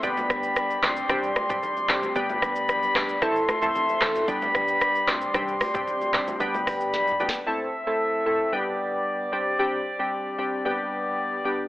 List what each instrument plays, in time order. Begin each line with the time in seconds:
0.03 sub bass G1, synth keys G3 B3 D4 G4, brass ensemble G4 D5 B5, kick, shaker
0.17 high conga, shaker
0.30 sub bass G1, kick, cross-stick, shaker
0.43 shaker
0.56 cross-stick, shaker
0.70 shaker
0.83 sub bass C2, synth keys G3 C4 D4 G4, brass ensemble C6, cross-stick, clap, high conga, low conga, shaker
0.96 shaker
1.09 sub bass C2, synth keys G3 C4 D4 G4, kick, cross-stick, low conga, shaker
1.23 shaker
1.36 cross-stick, high conga, shaker
1.49 sub bass B1, synth keys G3 C4 D4 G4, kick, mid tom, shaker
1.63 low conga, shaker
1.77 high conga, shaker
1.89 sub bass A1, synth keys G3 C4 D4 G4, kick, cross-stick, clap, mid tom, low conga, shaker
2.03 high conga, shaker
2.15 sub bass G1, synth keys G3 B3 D4 G4, brass ensemble D5 B5, kick, shaker
2.30 high conga, shaker
2.42 kick, cross-stick, shaker
2.56 shaker
2.69 sub bass B1, cross-stick, shaker
2.83 shaker
2.95 sub bass E1, synth keys G3 B3 D4 G4, kick, cross-stick, clap, high conga, low conga, shaker
3.09 shaker
3.22 sub bass A1, synth keys A3 C4 E4 A4, brass ensemble A4 E5 C6, kick, cross-stick, low conga, shaker
3.36 shaker
3.48 cross-stick, high conga, shaker
3.62 sub bass C2, synth keys A3 C4 E4 A4, mid tom, shaker
3.75 low conga, shaker
3.89 high conga, shaker
4.01 sub bass A1, synth keys A3 C4 E4 A4, kick, cross-stick, clap, mid tom, low conga, shaker
4.15 high conga, shaker
4.28 sub bass G1, synth keys G3 B3 D4 G4, brass ensemble G4 D5 B5, kick, shaker
4.42 high conga, shaker
4.55 sub bass G1, kick, cross-stick, shaker
4.68 shaker
4.81 cross-stick, shaker
4.95 shaker
5.07 sub bass C2, synth keys G3 C4 D4 G4, brass ensemble C6, cross-stick, clap, high conga, low conga, shaker
5.21 shaker
5.34 sub bass C2, synth keys G3 C4 D4 G4, kick, cross-stick, low conga, shaker
5.48 shaker
5.61 cross-stick, open hi-hat, high conga, shaker
5.74 sub bass B1, synth keys G3 C4 D4 G4, kick, mid tom, shaker
5.87 low conga, shaker
6.01 high conga, shaker
6.13 sub bass A1, synth keys G3 C4 D4 G4, kick, cross-stick, clap, mid tom, low conga, shaker
6.28 high conga, shaker
6.40 sub bass G1, synth keys G3 B3 D4 G4, brass ensemble D5 B5, kick, shaker
6.54 high conga, shaker
6.67 kick, cross-stick, open hi-hat, shaker
6.81 shaker
6.93 sub bass B1, snare, shaker
7.07 mid tom, shaker
7.20 sub bass E1, synth keys G3 B3 D4 G4, high conga, low conga, shaker
7.29 snare
7.34 shaker
7.46 synth keys A3 C4 E4 A4, brass ensemble C4 A4 E5
7.87 synth keys A3 C4 E4 A4
8.26 synth keys A3 C4 E4 A4
8.52 synth keys G3 B3 D4 G4, brass ensemble B3 G4 D5
9.32 synth keys G3 C4 D4 G4, brass ensemble C4
9.59 synth keys G3 C4 D4 G4
9.99 synth keys G3 C4 D4 G4
10.38 synth keys G3 C4 D4 G4
10.65 synth keys G3 B3 D4 G4, brass ensemble B3 D5
11.45 synth keys G3 B3 D4 G4